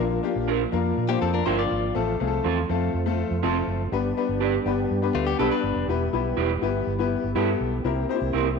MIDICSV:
0, 0, Header, 1, 6, 480
1, 0, Start_track
1, 0, Tempo, 490998
1, 1914, Time_signature, 4, 2, 24, 8
1, 8399, End_track
2, 0, Start_track
2, 0, Title_t, "Clean electric guitar"
2, 0, Program_c, 0, 27
2, 466, Note_on_c, 0, 62, 62
2, 468, Note_on_c, 0, 65, 70
2, 474, Note_on_c, 0, 70, 81
2, 596, Note_off_c, 0, 62, 0
2, 597, Note_off_c, 0, 65, 0
2, 600, Note_off_c, 0, 70, 0
2, 1429, Note_on_c, 0, 62, 77
2, 1435, Note_on_c, 0, 65, 76
2, 1439, Note_on_c, 0, 70, 89
2, 1558, Note_off_c, 0, 62, 0
2, 1561, Note_off_c, 0, 65, 0
2, 1563, Note_off_c, 0, 70, 0
2, 2390, Note_on_c, 0, 60, 73
2, 2399, Note_on_c, 0, 65, 78
2, 2402, Note_on_c, 0, 69, 79
2, 2519, Note_off_c, 0, 60, 0
2, 2523, Note_off_c, 0, 65, 0
2, 2525, Note_off_c, 0, 69, 0
2, 3352, Note_on_c, 0, 60, 84
2, 3354, Note_on_c, 0, 65, 89
2, 3360, Note_on_c, 0, 69, 92
2, 3481, Note_off_c, 0, 60, 0
2, 3481, Note_off_c, 0, 65, 0
2, 3485, Note_off_c, 0, 69, 0
2, 4307, Note_on_c, 0, 62, 72
2, 4311, Note_on_c, 0, 67, 69
2, 4319, Note_on_c, 0, 71, 72
2, 4438, Note_off_c, 0, 62, 0
2, 4440, Note_off_c, 0, 67, 0
2, 4444, Note_off_c, 0, 71, 0
2, 5268, Note_on_c, 0, 62, 65
2, 5275, Note_on_c, 0, 67, 76
2, 5280, Note_on_c, 0, 71, 76
2, 5398, Note_off_c, 0, 62, 0
2, 5402, Note_off_c, 0, 67, 0
2, 5404, Note_off_c, 0, 71, 0
2, 6225, Note_on_c, 0, 64, 69
2, 6229, Note_on_c, 0, 67, 73
2, 6234, Note_on_c, 0, 71, 80
2, 6356, Note_off_c, 0, 64, 0
2, 6358, Note_off_c, 0, 67, 0
2, 6360, Note_off_c, 0, 71, 0
2, 7191, Note_on_c, 0, 64, 79
2, 7197, Note_on_c, 0, 67, 86
2, 7199, Note_on_c, 0, 71, 75
2, 7318, Note_off_c, 0, 64, 0
2, 7321, Note_off_c, 0, 67, 0
2, 7322, Note_off_c, 0, 71, 0
2, 8147, Note_on_c, 0, 60, 73
2, 8152, Note_on_c, 0, 64, 74
2, 8159, Note_on_c, 0, 70, 82
2, 8275, Note_off_c, 0, 60, 0
2, 8278, Note_off_c, 0, 64, 0
2, 8282, Note_off_c, 0, 70, 0
2, 8399, End_track
3, 0, Start_track
3, 0, Title_t, "Clean electric guitar"
3, 0, Program_c, 1, 27
3, 1063, Note_on_c, 1, 67, 65
3, 1072, Note_on_c, 1, 58, 58
3, 1182, Note_off_c, 1, 67, 0
3, 1187, Note_off_c, 1, 58, 0
3, 1190, Note_on_c, 1, 69, 73
3, 1195, Note_on_c, 1, 60, 65
3, 1304, Note_off_c, 1, 69, 0
3, 1308, Note_off_c, 1, 60, 0
3, 1308, Note_on_c, 1, 70, 81
3, 1313, Note_on_c, 1, 62, 67
3, 1424, Note_on_c, 1, 72, 71
3, 1425, Note_off_c, 1, 62, 0
3, 1425, Note_off_c, 1, 70, 0
3, 1429, Note_on_c, 1, 64, 63
3, 1543, Note_off_c, 1, 72, 0
3, 1546, Note_off_c, 1, 64, 0
3, 1550, Note_on_c, 1, 65, 57
3, 1553, Note_on_c, 1, 74, 55
3, 1893, Note_off_c, 1, 74, 0
3, 1895, Note_off_c, 1, 65, 0
3, 5033, Note_on_c, 1, 57, 57
3, 5033, Note_on_c, 1, 65, 61
3, 5147, Note_off_c, 1, 65, 0
3, 5148, Note_off_c, 1, 57, 0
3, 5148, Note_on_c, 1, 67, 77
3, 5155, Note_on_c, 1, 59, 62
3, 5265, Note_off_c, 1, 67, 0
3, 5269, Note_off_c, 1, 59, 0
3, 5274, Note_on_c, 1, 69, 73
3, 5388, Note_off_c, 1, 69, 0
3, 5392, Note_on_c, 1, 71, 65
3, 5399, Note_on_c, 1, 62, 53
3, 5735, Note_off_c, 1, 71, 0
3, 5739, Note_off_c, 1, 62, 0
3, 8399, End_track
4, 0, Start_track
4, 0, Title_t, "Upright piano"
4, 0, Program_c, 2, 0
4, 0, Note_on_c, 2, 58, 77
4, 0, Note_on_c, 2, 62, 70
4, 0, Note_on_c, 2, 65, 67
4, 0, Note_on_c, 2, 70, 80
4, 0, Note_on_c, 2, 76, 60
4, 169, Note_off_c, 2, 58, 0
4, 170, Note_off_c, 2, 62, 0
4, 173, Note_off_c, 2, 65, 0
4, 174, Note_off_c, 2, 70, 0
4, 206, Note_off_c, 2, 76, 0
4, 224, Note_on_c, 2, 58, 70
4, 227, Note_on_c, 2, 62, 68
4, 231, Note_on_c, 2, 65, 68
4, 238, Note_on_c, 2, 67, 86
4, 595, Note_off_c, 2, 58, 0
4, 596, Note_off_c, 2, 62, 0
4, 598, Note_off_c, 2, 65, 0
4, 602, Note_off_c, 2, 67, 0
4, 705, Note_on_c, 2, 58, 77
4, 709, Note_on_c, 2, 62, 73
4, 713, Note_on_c, 2, 65, 74
4, 719, Note_on_c, 2, 70, 81
4, 984, Note_off_c, 2, 58, 0
4, 986, Note_off_c, 2, 62, 0
4, 988, Note_off_c, 2, 65, 0
4, 991, Note_off_c, 2, 70, 0
4, 1068, Note_on_c, 2, 58, 76
4, 1072, Note_on_c, 2, 62, 71
4, 1079, Note_on_c, 2, 65, 71
4, 1081, Note_on_c, 2, 72, 87
4, 1199, Note_on_c, 2, 81, 62
4, 1345, Note_off_c, 2, 58, 0
4, 1348, Note_off_c, 2, 62, 0
4, 1351, Note_off_c, 2, 65, 0
4, 1352, Note_off_c, 2, 72, 0
4, 1425, Note_off_c, 2, 81, 0
4, 1433, Note_on_c, 2, 79, 64
4, 1661, Note_off_c, 2, 79, 0
4, 1669, Note_on_c, 2, 77, 60
4, 1904, Note_on_c, 2, 57, 77
4, 1905, Note_on_c, 2, 60, 72
4, 1912, Note_on_c, 2, 65, 68
4, 1914, Note_on_c, 2, 69, 87
4, 2092, Note_off_c, 2, 57, 0
4, 2093, Note_off_c, 2, 60, 0
4, 2097, Note_off_c, 2, 65, 0
4, 2098, Note_off_c, 2, 69, 0
4, 2128, Note_off_c, 2, 77, 0
4, 2151, Note_on_c, 2, 57, 76
4, 2158, Note_on_c, 2, 65, 66
4, 2159, Note_on_c, 2, 60, 68
4, 2165, Note_on_c, 2, 68, 62
4, 2217, Note_off_c, 2, 68, 0
4, 2221, Note_on_c, 2, 69, 85
4, 2519, Note_off_c, 2, 57, 0
4, 2523, Note_off_c, 2, 60, 0
4, 2523, Note_off_c, 2, 65, 0
4, 2555, Note_off_c, 2, 69, 0
4, 2633, Note_on_c, 2, 57, 74
4, 2636, Note_on_c, 2, 60, 73
4, 2642, Note_on_c, 2, 65, 75
4, 2644, Note_on_c, 2, 69, 83
4, 2909, Note_off_c, 2, 57, 0
4, 2911, Note_off_c, 2, 60, 0
4, 2913, Note_off_c, 2, 65, 0
4, 2915, Note_off_c, 2, 69, 0
4, 2990, Note_on_c, 2, 57, 79
4, 2996, Note_on_c, 2, 60, 68
4, 2997, Note_on_c, 2, 65, 68
4, 3003, Note_on_c, 2, 69, 86
4, 3268, Note_off_c, 2, 57, 0
4, 3271, Note_off_c, 2, 60, 0
4, 3271, Note_off_c, 2, 65, 0
4, 3274, Note_off_c, 2, 69, 0
4, 3355, Note_on_c, 2, 57, 76
4, 3356, Note_on_c, 2, 60, 71
4, 3364, Note_on_c, 2, 65, 70
4, 3365, Note_on_c, 2, 69, 83
4, 3722, Note_off_c, 2, 57, 0
4, 3722, Note_off_c, 2, 60, 0
4, 3726, Note_off_c, 2, 65, 0
4, 3727, Note_off_c, 2, 69, 0
4, 3835, Note_on_c, 2, 59, 77
4, 3838, Note_on_c, 2, 62, 69
4, 3840, Note_on_c, 2, 67, 66
4, 3845, Note_on_c, 2, 71, 88
4, 4019, Note_off_c, 2, 59, 0
4, 4020, Note_off_c, 2, 62, 0
4, 4021, Note_off_c, 2, 67, 0
4, 4024, Note_off_c, 2, 71, 0
4, 4077, Note_on_c, 2, 59, 78
4, 4078, Note_on_c, 2, 62, 65
4, 4082, Note_on_c, 2, 67, 68
4, 4085, Note_on_c, 2, 71, 82
4, 4443, Note_off_c, 2, 59, 0
4, 4443, Note_off_c, 2, 62, 0
4, 4445, Note_off_c, 2, 67, 0
4, 4446, Note_off_c, 2, 71, 0
4, 4552, Note_on_c, 2, 59, 77
4, 4553, Note_on_c, 2, 62, 67
4, 4562, Note_on_c, 2, 67, 71
4, 4566, Note_on_c, 2, 71, 86
4, 4828, Note_off_c, 2, 59, 0
4, 4829, Note_off_c, 2, 62, 0
4, 4833, Note_off_c, 2, 67, 0
4, 4836, Note_off_c, 2, 71, 0
4, 4907, Note_on_c, 2, 59, 75
4, 4910, Note_on_c, 2, 62, 69
4, 4916, Note_on_c, 2, 67, 72
4, 4921, Note_on_c, 2, 71, 85
4, 5186, Note_off_c, 2, 59, 0
4, 5187, Note_off_c, 2, 62, 0
4, 5190, Note_off_c, 2, 67, 0
4, 5193, Note_off_c, 2, 71, 0
4, 5268, Note_on_c, 2, 59, 78
4, 5276, Note_on_c, 2, 62, 67
4, 5279, Note_on_c, 2, 67, 66
4, 5283, Note_on_c, 2, 71, 80
4, 5638, Note_off_c, 2, 59, 0
4, 5641, Note_off_c, 2, 62, 0
4, 5643, Note_off_c, 2, 67, 0
4, 5645, Note_off_c, 2, 71, 0
4, 5757, Note_on_c, 2, 59, 72
4, 5760, Note_on_c, 2, 64, 68
4, 5763, Note_on_c, 2, 67, 68
4, 5769, Note_on_c, 2, 71, 85
4, 5939, Note_off_c, 2, 59, 0
4, 5940, Note_off_c, 2, 64, 0
4, 5942, Note_off_c, 2, 67, 0
4, 5945, Note_off_c, 2, 71, 0
4, 5991, Note_on_c, 2, 59, 74
4, 5997, Note_on_c, 2, 64, 70
4, 6003, Note_on_c, 2, 67, 69
4, 6003, Note_on_c, 2, 71, 79
4, 6359, Note_off_c, 2, 59, 0
4, 6361, Note_off_c, 2, 64, 0
4, 6364, Note_off_c, 2, 71, 0
4, 6365, Note_off_c, 2, 67, 0
4, 6469, Note_on_c, 2, 59, 74
4, 6473, Note_on_c, 2, 64, 70
4, 6480, Note_on_c, 2, 67, 73
4, 6484, Note_on_c, 2, 71, 91
4, 6745, Note_off_c, 2, 59, 0
4, 6747, Note_off_c, 2, 64, 0
4, 6751, Note_off_c, 2, 67, 0
4, 6753, Note_off_c, 2, 71, 0
4, 6828, Note_on_c, 2, 59, 76
4, 6836, Note_on_c, 2, 64, 66
4, 6842, Note_on_c, 2, 67, 67
4, 6844, Note_on_c, 2, 71, 84
4, 7105, Note_off_c, 2, 59, 0
4, 7109, Note_off_c, 2, 64, 0
4, 7112, Note_off_c, 2, 67, 0
4, 7113, Note_off_c, 2, 71, 0
4, 7185, Note_on_c, 2, 59, 75
4, 7189, Note_on_c, 2, 64, 68
4, 7192, Note_on_c, 2, 67, 71
4, 7194, Note_on_c, 2, 69, 82
4, 7554, Note_off_c, 2, 59, 0
4, 7556, Note_off_c, 2, 64, 0
4, 7558, Note_off_c, 2, 67, 0
4, 7559, Note_off_c, 2, 69, 0
4, 7668, Note_on_c, 2, 60, 75
4, 7672, Note_on_c, 2, 64, 71
4, 7674, Note_on_c, 2, 67, 67
4, 7680, Note_on_c, 2, 70, 81
4, 7852, Note_off_c, 2, 60, 0
4, 7855, Note_off_c, 2, 64, 0
4, 7856, Note_off_c, 2, 67, 0
4, 7859, Note_off_c, 2, 70, 0
4, 7911, Note_on_c, 2, 60, 74
4, 7911, Note_on_c, 2, 63, 55
4, 7918, Note_on_c, 2, 67, 66
4, 7923, Note_on_c, 2, 72, 83
4, 7969, Note_off_c, 2, 63, 0
4, 7973, Note_on_c, 2, 64, 68
4, 8277, Note_off_c, 2, 60, 0
4, 8280, Note_off_c, 2, 67, 0
4, 8283, Note_off_c, 2, 72, 0
4, 8307, Note_off_c, 2, 64, 0
4, 8399, End_track
5, 0, Start_track
5, 0, Title_t, "Tonewheel organ"
5, 0, Program_c, 3, 16
5, 0, Note_on_c, 3, 53, 62
5, 0, Note_on_c, 3, 58, 55
5, 0, Note_on_c, 3, 62, 57
5, 0, Note_on_c, 3, 65, 69
5, 1895, Note_off_c, 3, 58, 0
5, 1895, Note_off_c, 3, 62, 0
5, 1913, Note_on_c, 3, 60, 55
5, 1917, Note_on_c, 3, 57, 56
5, 3796, Note_off_c, 3, 65, 0
5, 3801, Note_off_c, 3, 53, 0
5, 3816, Note_off_c, 3, 60, 0
5, 3818, Note_off_c, 3, 57, 0
5, 3831, Note_on_c, 3, 67, 69
5, 3832, Note_on_c, 3, 59, 59
5, 3832, Note_on_c, 3, 62, 59
5, 3833, Note_on_c, 3, 55, 60
5, 5734, Note_off_c, 3, 59, 0
5, 5734, Note_off_c, 3, 62, 0
5, 5752, Note_on_c, 3, 64, 54
5, 5759, Note_on_c, 3, 59, 53
5, 7632, Note_off_c, 3, 55, 0
5, 7651, Note_off_c, 3, 64, 0
5, 7655, Note_off_c, 3, 59, 0
5, 7671, Note_on_c, 3, 64, 58
5, 7673, Note_on_c, 3, 60, 56
5, 7678, Note_on_c, 3, 58, 62
5, 8399, Note_off_c, 3, 58, 0
5, 8399, Note_off_c, 3, 60, 0
5, 8399, Note_off_c, 3, 64, 0
5, 8399, Note_off_c, 3, 67, 0
5, 8399, End_track
6, 0, Start_track
6, 0, Title_t, "Fingered electric bass"
6, 0, Program_c, 4, 33
6, 0, Note_on_c, 4, 34, 93
6, 173, Note_off_c, 4, 34, 0
6, 351, Note_on_c, 4, 34, 83
6, 625, Note_off_c, 4, 34, 0
6, 711, Note_on_c, 4, 41, 84
6, 894, Note_off_c, 4, 41, 0
6, 951, Note_on_c, 4, 46, 83
6, 1135, Note_off_c, 4, 46, 0
6, 1192, Note_on_c, 4, 41, 84
6, 1375, Note_off_c, 4, 41, 0
6, 1430, Note_on_c, 4, 31, 82
6, 1614, Note_off_c, 4, 31, 0
6, 1674, Note_on_c, 4, 32, 85
6, 1856, Note_off_c, 4, 32, 0
6, 1916, Note_on_c, 4, 33, 92
6, 2098, Note_off_c, 4, 33, 0
6, 2160, Note_on_c, 4, 36, 82
6, 2340, Note_off_c, 4, 36, 0
6, 2395, Note_on_c, 4, 40, 84
6, 2577, Note_off_c, 4, 40, 0
6, 2635, Note_on_c, 4, 41, 83
6, 2818, Note_off_c, 4, 41, 0
6, 2873, Note_on_c, 4, 41, 81
6, 3147, Note_off_c, 4, 41, 0
6, 3233, Note_on_c, 4, 41, 76
6, 3325, Note_off_c, 4, 41, 0
6, 3354, Note_on_c, 4, 29, 83
6, 3537, Note_off_c, 4, 29, 0
6, 3593, Note_on_c, 4, 30, 84
6, 3776, Note_off_c, 4, 30, 0
6, 3832, Note_on_c, 4, 31, 92
6, 4016, Note_off_c, 4, 31, 0
6, 4193, Note_on_c, 4, 31, 81
6, 4467, Note_off_c, 4, 31, 0
6, 4550, Note_on_c, 4, 31, 82
6, 4734, Note_off_c, 4, 31, 0
6, 4796, Note_on_c, 4, 43, 88
6, 4978, Note_off_c, 4, 43, 0
6, 5028, Note_on_c, 4, 38, 86
6, 5213, Note_off_c, 4, 38, 0
6, 5273, Note_on_c, 4, 35, 85
6, 5365, Note_off_c, 4, 35, 0
6, 5508, Note_on_c, 4, 31, 75
6, 5602, Note_off_c, 4, 31, 0
6, 5629, Note_on_c, 4, 29, 77
6, 5722, Note_off_c, 4, 29, 0
6, 5748, Note_on_c, 4, 28, 102
6, 5933, Note_off_c, 4, 28, 0
6, 5993, Note_on_c, 4, 35, 80
6, 6175, Note_off_c, 4, 35, 0
6, 6232, Note_on_c, 4, 28, 89
6, 6414, Note_off_c, 4, 28, 0
6, 6473, Note_on_c, 4, 31, 76
6, 6655, Note_off_c, 4, 31, 0
6, 6715, Note_on_c, 4, 31, 76
6, 6987, Note_off_c, 4, 31, 0
6, 7076, Note_on_c, 4, 31, 73
6, 7166, Note_off_c, 4, 31, 0
6, 7192, Note_on_c, 4, 43, 86
6, 7374, Note_off_c, 4, 43, 0
6, 7435, Note_on_c, 4, 35, 81
6, 7616, Note_off_c, 4, 35, 0
6, 7669, Note_on_c, 4, 36, 111
6, 7852, Note_off_c, 4, 36, 0
6, 8030, Note_on_c, 4, 36, 87
6, 8122, Note_off_c, 4, 36, 0
6, 8155, Note_on_c, 4, 36, 84
6, 8399, Note_off_c, 4, 36, 0
6, 8399, End_track
0, 0, End_of_file